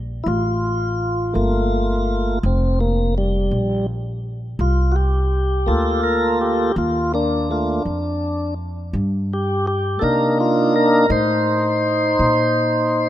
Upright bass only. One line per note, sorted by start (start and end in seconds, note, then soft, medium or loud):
0.00 0.23 A#1 medium
0.26 1.31 A1 medium
1.35 2.40 G1 medium
2.43 3.48 F1 medium
3.51 4.56 A#1 medium
4.59 5.64 C2 medium
5.68 6.73 D2 medium
6.76 7.82 D#2 medium
7.85 8.90 F2 medium
8.93 9.99 G2 medium
10.02 11.08 C3 medium
11.10 12.16 A2 medium
12.19 13.09 A#2 medium